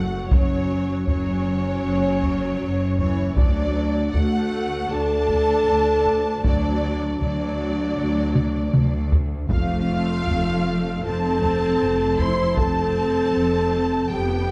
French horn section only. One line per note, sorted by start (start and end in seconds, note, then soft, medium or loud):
0.00 0.33 F#4 medium
0.33 1.09 C#4 medium
1.10 2.97 C#4 medium
3.00 3.37 C#4 medium
3.37 4.14 D4 medium
4.14 4.91 F#4 medium
4.92 6.28 A4 loud
6.45 7.20 D4 loud
7.21 9.09 D4 loud
9.50 11.00 F4 loud
11.03 12.16 A4 loud
12.19 12.57 C5 loud
12.58 14.11 A4 loud
14.11 14.51 G4 loud